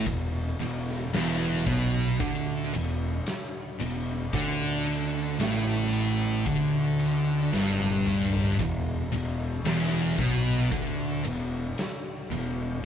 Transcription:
0.06 0.56 E1 medium
0.06 0.50 E2 medium
0.06 kick medium
0.06 ride medium
0.60 1.10 E1 medium
0.60 1.03 E2 medium
0.60 ride medium
0.88 snare soft
1.13 1.63 E1 loud
1.13 1.65 E2 loud
1.13 snare loud
1.13 ride medium
1.66 2.16 B1 medium
1.66 2.18 B2 loud
1.66 kick loud
1.66 ride medium
2.20 2.70 D2 medium
2.20 2.72 D3 loud
2.20 kick loud
2.20 ride loud
2.73 3.23 E1 medium
2.73 3.16 E2 medium
2.73 ride medium
3.27 snare loud
3.27 ride medium
3.79 4.30 E1 medium
3.79 4.22 E2 medium
3.79 ride medium
4.33 5.36 D2 loud
4.33 5.38 D3 medium
4.33 kick loud
4.33 ride loud
4.86 ride medium
5.39 6.42 A1 loud
5.39 6.44 A2 medium
5.39 snare loud
5.39 ride medium
5.93 ride medium
6.46 7.49 D2 medium
6.46 7.51 D3 loud
6.46 kick loud
6.46 ride loud
6.99 ride medium
7.52 8.55 G1 medium
7.52 8.57 G2 loud
7.52 snare medium
7.80 high tom medium
8.06 mid tom medium
8.32 floor tom medium
8.59 9.08 E1 medium
8.59 9.02 E2 medium
8.59 kick medium
8.59 ride medium
9.12 9.62 E1 medium
9.12 9.55 E2 medium
9.12 ride medium
9.65 10.15 E1 medium
9.65 10.17 E2 loud
9.65 snare loud
9.65 ride medium
10.18 10.68 B1 medium
10.18 10.70 B2 loud
10.18 kick loud
10.18 ride medium
10.71 11.21 D2 medium
10.71 11.23 D3 loud
10.71 kick loud
10.71 ride medium
11.24 11.74 E1 medium
11.24 11.67 E2 medium
11.24 ride medium
11.78 snare loud
11.78 ride medium
12.30 12.80 E1 medium
12.30 12.74 E2 medium
12.30 ride medium

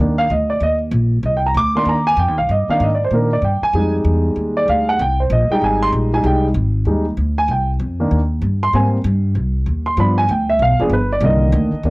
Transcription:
0.00 0.29 D#2 medium
0.00 0.22 D#3 soft
0.00 0.23 A#3 soft
0.00 0.23 D4 medium
0.18 0.30 F5 medium
0.30 0.60 D2 medium
0.30 0.50 D#5 medium
0.50 0.61 D5 medium
0.60 0.91 D#2 medium
0.60 0.74 D#5 medium
0.91 1.22 A#1 medium
1.23 1.54 C2 medium
1.23 1.35 D#5 medium
1.37 1.46 G5 medium
1.46 1.56 A#5 medium
1.54 1.85 D2 medium
1.54 1.75 D6 medium
1.75 1.94 D#3 soft
1.75 1.94 A#3 soft
1.75 1.94 D4 medium
1.75 1.87 C6 medium
1.85 2.16 D#2 medium
1.85 2.07 A#5 medium
2.07 2.18 G#5 medium
2.17 2.28 F2 medium
2.17 2.38 G5 medium
2.28 2.38 D#2 medium
2.38 2.48 C2 medium
2.38 2.49 F5 medium
2.49 2.67 G2 medium
2.49 2.69 D#5 medium
2.68 2.88 D#3 medium
2.68 2.88 A#3 soft
2.68 2.88 D4 medium
2.68 2.81 F5 medium
2.68 muted upright bass stroke soft
2.80 3.10 G#2 medium
2.80 2.92 D#5 medium
2.95 3.03 D5 medium
3.04 3.13 C5 medium
3.11 3.41 A#2 medium
3.11 3.30 D#3 soft
3.11 3.30 A#3 soft
3.11 3.30 D4 soft
3.11 3.32 A#4 medium
3.33 3.44 D5 medium
3.42 3.60 G2 medium
3.42 3.63 G5 medium
3.62 3.92 G#5 medium
3.62 muted upright bass stroke soft
3.73 4.04 F2 medium
3.73 4.95 G3 soft
3.73 4.95 G#3 soft
3.73 4.96 D#4 soft
4.04 4.35 E2 medium
4.36 4.66 D#2 medium
4.57 4.68 D5 medium
4.68 4.98 D2 medium
4.68 4.88 F5 medium
4.89 5.00 F#5 medium
4.99 5.29 C2 medium
4.99 5.19 G5 medium
5.20 5.31 C5 medium
5.30 5.48 A#1 loud
5.30 5.50 D#5 medium
5.50 6.12 G3 soft
5.50 6.12 G#3 soft
5.50 6.12 D#4 medium
5.50 5.62 G5 medium
5.50 muted upright bass stroke soft
5.61 5.92 G#1 medium
5.61 5.82 G#5 medium
5.83 5.89 C6 loud
5.92 6.23 A#1 medium
6.13 6.23 G3 soft
6.13 6.23 G#3 soft
6.13 6.23 D#4 soft
6.13 6.24 G#5 medium
6.24 6.54 C2 medium
6.24 6.47 G3 soft
6.24 6.47 G#3 soft
6.24 6.48 D#4 soft
6.24 6.44 G5 medium
6.54 6.85 G#1 medium
6.85 7.16 D#2 medium
6.85 7.04 G3 soft
6.85 7.04 G#3 soft
6.85 7.05 D#4 soft
7.17 7.47 D2 medium
7.38 7.49 G#5 medium
7.48 7.78 C2 medium
7.48 7.69 G5 medium
7.80 8.10 F2 medium
8.00 8.18 D#3 soft
8.00 8.18 A#3 soft
8.00 8.19 D4 medium
8.11 8.41 D#2 medium
8.42 8.72 G2 medium
8.63 8.74 C6 medium
8.73 9.03 G#2 medium
8.73 8.96 G3 soft
8.73 8.96 A#3 soft
8.73 8.97 C4 soft
8.73 8.86 G#5 medium
9.04 9.34 G2 medium
9.35 9.65 C2 medium
9.66 9.96 D#2 medium
9.86 9.97 C6 medium
9.97 10.27 G2 medium
9.97 10.21 F3 soft
9.97 10.21 B3 soft
9.97 10.21 D4 soft
9.97 10.18 B5 medium
10.18 10.29 G#5 medium
10.29 10.59 D2 medium
10.29 10.49 G5 medium
10.50 10.60 E5 medium
10.59 10.71 B1 medium
10.59 10.80 F5 medium
10.70 10.79 G1 medium
10.79 10.89 F1 medium
10.79 10.90 F3 medium
10.79 10.90 B3 soft
10.79 10.90 D4 medium
10.79 10.91 G#4 medium
10.90 11.20 G1 medium
10.90 11.11 B4 medium
11.13 11.23 D5 medium
11.21 11.51 C2 medium
11.21 11.71 D3 soft
11.21 11.70 D#3 soft
11.21 11.71 A#3 soft
11.25 11.90 D#5 medium
11.52 11.71 D2 loud
11.72 muted upright bass stroke soft
11.83 11.90 D#2 medium
11.83 11.90 D#3 soft
11.83 11.90 A#3 soft
11.83 11.90 D4 medium

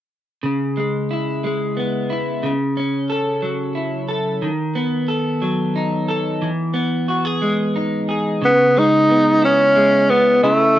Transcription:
0.43 2.42 C#3 soft
0.77 1.43 G#3 soft
1.11 2.10 E4 soft
1.44 2.50 G#3 soft
1.77 2.50 B3 soft
2.10 2.50 E4 soft
2.43 4.41 C#3 medium
2.77 4.48 C#4 soft
3.10 4.08 A4 soft
3.42 4.48 F#3 soft
3.75 4.48 E4 soft
4.08 4.48 A4 soft
4.42 6.41 D#3 soft
4.75 6.73 B3 soft
5.08 6.07 A4 soft
5.42 6.48 F#3 soft
5.75 6.48 D#4 soft
6.08 6.48 A4 soft
6.42 8.41 E3 medium
6.74 8.49 B3 soft
7.08 7.25 F#4 soft
7.25 8.08 G#4 soft
7.42 8.50 G#3 soft
7.76 8.50 D#4 soft
8.09 8.49 G#4 soft
8.42 10.42 C#3 medium
8.42 8.80 B3 medium
8.77 9.75 G#3 soft
8.77 9.44 D#4 medium
9.10 10.08 B3 soft
9.42 10.11 C#4 medium
9.42 10.43 E4 soft
9.76 10.49 G#3 soft
10.10 10.49 B3 soft
10.10 10.43 B3 medium
10.43 10.79 C#3 medium
10.43 10.79 A3 medium
10.43 10.79 E4 medium

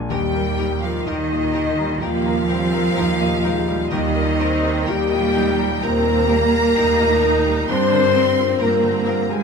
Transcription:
0.00 0.13 A#1 medium
0.00 0.13 A#2 medium
0.00 0.14 F3 soft
0.00 0.13 G#3 soft
0.00 0.33 A#3 medium
0.00 0.13 D4 medium
0.00 0.14 D4 medium
0.00 0.14 G#4 medium
0.00 0.13 A#4 medium
0.00 1.07 A#4 medium
0.00 0.14 D5 medium
0.00 0.14 G#5 medium
0.09 0.96 D#2 medium
0.09 1.99 D#2 medium
0.09 3.90 D#3 medium
0.09 0.79 G3 medium
0.09 0.79 G4 loud
0.09 0.19 A#4 medium
0.09 0.80 G5 medium
0.34 4.14 A#3 medium
0.34 0.74 A#4 soft
0.57 0.98 G3 medium
0.57 4.39 D#4 medium
0.57 0.65 A#4 medium
0.83 1.07 F3 medium
0.83 1.09 F4 medium
0.83 3.67 G4 soft
0.83 1.22 A#4 medium
0.83 1.07 F5 medium
1.06 1.91 D#2 medium
1.06 2.01 D#3 medium
1.06 2.03 D#4 medium
1.06 1.46 D#4 soft
1.06 1.15 A#4 medium
1.06 3.43 A#4 medium
1.06 2.02 D#5 medium
1.31 1.70 A#2 soft
1.31 3.20 D#5 medium
1.54 1.93 D#4 medium
1.54 1.62 A#4 medium
1.54 2.01 G5 medium
1.78 2.18 G3 medium
1.78 2.24 A#5 medium
2.01 2.86 D#2 medium
2.01 2.41 A#2 medium
2.01 3.92 F3 medium
2.01 2.47 A#3 medium
2.01 3.89 F4 loud
2.01 2.09 A#4 medium
2.01 3.92 F5 medium
2.01 2.47 G5 medium
2.26 2.65 A#4 medium
2.26 2.72 A#5 medium
2.49 2.89 G3 medium
2.49 2.97 C4 medium
2.49 2.57 A#4 medium
2.49 2.96 G5 medium
2.73 3.12 A#4 medium
2.73 5.57 A#5 medium
2.97 3.81 D#2 medium
2.97 3.45 A#3 medium
2.97 3.36 D#4 medium
2.97 3.05 A#4 medium
2.97 5.34 G5 medium
3.21 3.60 A#2 medium
3.21 5.10 D#5 medium
3.43 3.93 G#3 medium
3.43 3.83 D#4 medium
3.43 3.51 A#4 medium
3.43 4.86 A#4 medium
3.68 4.07 G3 medium
3.68 4.63 G4 medium
3.91 5.78 D#2 medium
3.91 4.77 D#2 medium
3.91 7.72 D#3 medium
3.91 4.86 D#3 medium
3.91 4.39 G3 medium
3.91 4.88 D#4 loud
3.91 3.99 A#4 medium
3.91 4.85 D#5 medium
4.16 8.06 A#3 medium
4.16 4.54 A#4 medium
4.40 4.78 G3 medium
4.40 4.88 C4 medium
4.40 7.73 D#4 medium
4.40 4.48 A#4 medium
4.64 7.44 G4 medium
4.64 5.02 A#4 medium
4.87 5.72 D#2 medium
4.87 5.82 G3 medium
4.87 5.83 A#3 medium
4.87 5.26 D#4 medium
4.87 5.83 G4 loud
4.87 4.95 A#4 medium
4.87 7.21 A#4 medium
4.87 5.83 G5 medium
5.11 5.50 A#2 medium
5.11 6.98 D#5 medium
5.34 5.74 D#4 medium
5.34 5.42 A#4 medium
5.34 5.81 G5 medium
5.59 5.97 G3 medium
5.59 6.04 A#5 medium
5.82 6.66 D#2 medium
5.82 6.20 A#2 medium
5.82 7.70 A#3 medium
5.82 6.30 C4 medium
5.82 5.90 A#4 medium
5.82 7.66 A#4 loud
5.82 6.28 G5 medium
5.82 7.70 A#5 loud
6.05 6.44 A#4 medium
6.05 6.52 A#5 medium
6.29 6.67 G3 medium
6.29 6.77 A#3 medium
6.29 6.37 A#4 medium
6.29 6.75 G5 medium
6.53 6.90 A#4 medium
6.53 9.43 A#5 medium
6.75 7.59 D#2 medium
6.75 7.14 D#4 medium
6.75 7.70 D#4 medium
6.75 6.83 A#4 medium
6.75 9.29 G5 medium
6.99 7.37 A#2 medium
6.99 7.72 D#5 medium
7.22 7.59 D#4 medium
7.22 7.30 A#4 medium
7.22 8.83 A#4 medium
7.45 7.69 G3 medium
7.45 9.43 G4 medium
7.68 9.43 G2 medium
7.68 8.50 G2 medium
7.68 8.59 C4 medium
7.68 8.16 D4 medium
7.68 7.76 A#4 medium
7.68 8.59 C5 loud
7.68 8.60 C6 medium
7.92 9.43 D3 soft
7.92 8.29 A#4 medium
8.14 8.52 G3 medium
8.14 9.43 A#3 medium
8.14 9.43 C4 medium
8.14 8.23 A#4 medium
8.38 9.43 F4 medium
8.38 8.75 A#4 soft
8.59 9.43 G2 medium
8.59 9.31 A#3 medium
8.59 8.98 F4 medium
8.59 8.67 A#4 medium
8.59 9.31 A#4 medium
8.59 9.30 A#5 medium
8.83 9.21 D3 soft
8.83 9.43 A#4 medium
9.06 9.43 F4 soft
9.06 9.14 A#4 medium
9.06 9.43 F5 medium
9.29 9.43 G3 medium
9.29 9.43 G#3 medium
9.29 9.43 G#4 medium
9.29 9.43 G5 medium
9.29 9.43 G#5 medium

